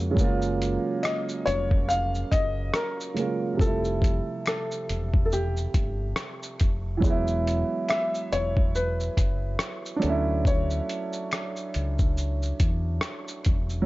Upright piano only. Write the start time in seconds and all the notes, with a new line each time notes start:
Already playing: C#3 G#3 A#3 F#4
0.11 C#3 F#3
0.18 G#3 A#3
0.24 F4
3.14 C#3 F#3 G#3
3.19 A#3 F4
3.54 C3 F3
3.60 G3 A3
3.66 E4
6.97 E3 F#3
7.04 G#3 B3
7.10 E4
9.96 F#3 D4
10.03 A3 C#4
10.09 E4
13.82 F#3